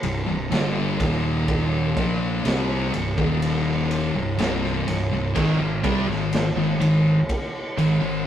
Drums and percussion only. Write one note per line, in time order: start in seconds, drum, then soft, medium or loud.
0.03 ride medium
0.52 snare loud
0.52 ride loud
1.00 kick loud
1.00 snare soft
1.00 ride medium
1.48 kick loud
1.48 ride loud
1.97 kick loud
1.97 ride medium
2.45 snare loud
2.45 ride loud
2.94 ride medium
3.18 kick loud
3.42 ride loud
3.91 ride medium
4.39 snare loud
4.39 ride loud
4.65 snare soft
4.88 snare soft
4.88 ride medium
5.36 kick loud
5.36 crash loud
5.84 kick loud
5.84 ride medium
6.11 snare soft
6.33 snare loud
6.33 ride loud
6.81 ride medium
7.29 kick loud
7.29 ride loud
7.78 ride medium